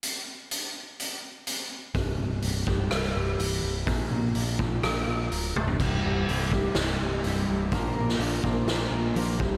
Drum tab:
CC |----------------|----------------|----------------|x---------------|
HH |x---x---x---x---|o---o---o---o---|o---o---o---o---|----o---o---o---|
SD |----------------|--------r-------|--------r-------|--------o-------|
T1 |----------------|----------------|--------------o-|----------------|
FT |----------------|----------------|---------------o|----------------|
BD |----------------|o-----o---------|o-----o---------|o-----o---------|

CC |----------------|
HH |o---o---o---o---|
SD |---o----o-------|
T1 |----------------|
FT |----------------|
BD |o-----o-------o-|